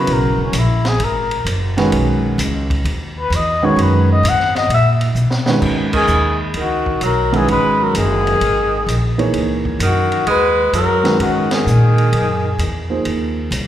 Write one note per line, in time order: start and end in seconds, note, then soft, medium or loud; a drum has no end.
0.00 0.52 C#3 medium
0.00 0.52 F#3 medium
0.00 0.52 B3 medium
0.00 0.52 E4 medium
0.00 0.52 A#4 medium
0.00 0.15 B4 medium
0.07 0.24 B1 medium
0.07 ride medium
0.13 0.42 A#4 medium
0.23 0.37 F#1 medium
0.37 0.52 E1 medium
0.44 0.60 C#4 medium
0.53 0.99 A#1 medium
0.53 hi-hat pedal medium
0.53 ride medium
0.58 0.89 E4 medium
0.85 1.06 G#4 medium
0.85 snare medium
0.85 ride soft
0.99 1.44 G#1 medium
0.99 ride medium
1.04 1.49 A#4 medium
1.31 ride medium
1.45 1.91 F#1 medium
1.45 hi-hat pedal medium
1.45 ride medium
1.77 2.36 D#3 medium
1.77 2.36 G#3 medium
1.77 2.36 C#4 medium
1.77 2.36 F#4 medium
1.77 2.37 B4 medium
1.77 snare soft
1.77 ride soft
1.92 2.38 B1 medium
1.92 ride medium
2.38 2.84 C#2 loud
2.38 hi-hat pedal medium
2.38 ride medium
2.70 kick medium
2.70 ride soft
2.84 3.30 D#2 medium
2.84 ride medium
3.19 3.37 B4 medium
3.30 3.76 E2 medium
3.30 hi-hat pedal medium
3.30 ride medium
3.35 3.66 D#5 medium
3.62 4.21 D#3 medium
3.62 4.21 G#3 medium
3.62 4.21 C#4 medium
3.62 4.21 F#4 medium
3.62 4.21 B4 medium
3.62 3.83 C#5 medium
3.76 4.22 F#2 loud
3.76 ride medium
3.82 4.11 B4 medium
4.12 4.30 D#5 loud
4.23 4.69 G#2 loud
4.23 hi-hat pedal medium
4.23 ride medium
4.29 4.56 F#5 loud
4.40 snare soft
4.55 4.70 D#5 medium
4.55 snare soft
4.55 ride soft
4.69 5.14 A#2 medium
4.69 ride medium
4.74 4.92 E5 medium
5.01 ride medium
5.15 5.61 B2 medium
5.15 hi-hat pedal medium
5.30 snare medium
5.46 6.06 D#3 medium
5.46 6.06 G#3 medium
5.46 6.06 C#4 medium
5.46 6.07 F#4 medium
5.46 6.07 B4 medium
5.46 snare medium
5.62 6.07 G#2 medium
5.62 kick medium
5.62 crash medium
5.93 6.37 D#3 medium
5.93 6.38 G#4 medium
5.93 kick medium
5.93 crash medium
6.07 6.54 D#2 medium
6.07 hi-hat pedal medium
6.54 7.00 C#2 medium
6.54 6.99 D#3 medium
6.54 ride medium
6.59 7.01 F#4 medium
6.86 kick medium
7.01 7.47 B1 medium
7.01 7.35 F#3 medium
7.01 hi-hat pedal soft
7.01 ride medium
7.05 7.38 A#4 medium
7.32 7.91 D#3 medium
7.32 7.49 E3 medium
7.32 7.91 G#3 medium
7.32 7.91 C#4 medium
7.32 7.92 F#4 medium
7.32 7.92 B4 medium
7.32 ride soft
7.37 7.50 G#4 medium
7.48 7.93 G#1 medium
7.48 7.83 G#3 medium
7.48 7.85 B4 medium
7.48 ride medium
7.82 7.96 F#3 medium
7.82 7.96 A#4 medium
7.94 8.40 F#1 medium
7.94 9.16 D#3 medium
7.94 9.16 G#4 loud
7.94 hi-hat pedal medium
7.94 ride medium
8.27 ride soft
8.41 8.86 G#1 medium
8.41 ride medium
8.86 9.32 A#1 medium
8.86 hi-hat pedal medium
8.86 ride medium
9.18 9.77 E3 medium
9.18 9.77 A#3 medium
9.18 9.77 D#4 medium
9.18 9.77 G#4 medium
9.18 9.78 C#5 medium
9.18 ride soft
9.33 9.79 C#2 medium
9.33 ride medium
9.65 kick medium
9.79 10.25 F#2 medium
9.79 10.24 D#3 medium
9.79 hi-hat pedal medium
9.79 ride medium
9.84 10.25 F#4 medium
10.12 ride soft
10.26 10.72 D#2 medium
10.26 10.70 G#3 medium
10.26 10.72 B4 loud
10.26 ride medium
10.73 11.18 F#2 medium
10.73 11.20 F#3 medium
10.73 11.23 A#4 medium
10.73 hi-hat pedal medium
10.73 ride medium
11.03 11.63 D#3 medium
11.03 11.62 G#3 medium
11.03 11.63 C#4 medium
11.03 11.63 F#4 medium
11.03 11.63 B4 medium
11.03 snare medium
11.03 ride soft
11.18 11.65 G#2 medium
11.18 11.51 D#3 medium
11.18 11.52 F#4 medium
11.18 ride medium
11.51 12.86 D#3 medium
11.51 12.88 G#4 medium
11.51 snare medium
11.51 ride medium
11.66 12.11 A#2 medium
11.66 hi-hat pedal medium
11.98 ride soft
12.12 12.58 F#2 medium
12.12 ride medium
12.58 13.04 E2 medium
12.58 hi-hat pedal soft
12.58 ride medium
12.90 13.49 F3 medium
12.90 13.49 A#3 soft
12.90 13.49 D#4 soft
12.90 13.49 G#4 soft
12.90 13.49 C5 medium
13.05 13.50 D#2 medium
13.05 ride medium
13.51 13.67 C2 medium
13.51 hi-hat pedal medium
13.51 ride medium